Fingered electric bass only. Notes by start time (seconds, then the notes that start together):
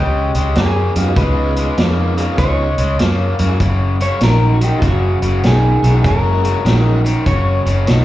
Already playing: C#2
0.35 C#2
0.56 F#2
0.96 F#2
1.16 C#2
1.78 F2
2.38 C#2
2.78 C#2
3.00 F#2
3.40 F#2
3.60 F#1
4.21 A#1
4.82 F#1
5.22 F#1
5.44 B1
5.82 B1
6.04 F#1
6.65 A#1
7.26 F#1
7.66 F#1
7.88 B1